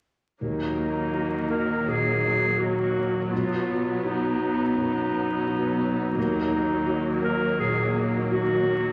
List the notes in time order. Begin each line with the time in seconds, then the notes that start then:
0.41 D#2 D#3 F#3 A#3 D#4
0.77 A#3
1.13 F#4
1.50 A#3 A#4
1.87 A#2 G#4
2.23 A#3
2.59 F#4
2.97 A#3
3.31 B1 B2 B3 F4
3.69 B3
4.04 D#4 F#4
4.39 B3
4.75 F#2
5.10 B3
5.47 F#4
5.82 B3
6.17 D#2 D#3 F#3 A#3 D#4
6.52 A#3
6.87 F#4
7.22 A#3 A#4
7.58 A#2 G#4
7.94 A#3
8.30 F#4
8.65 A#3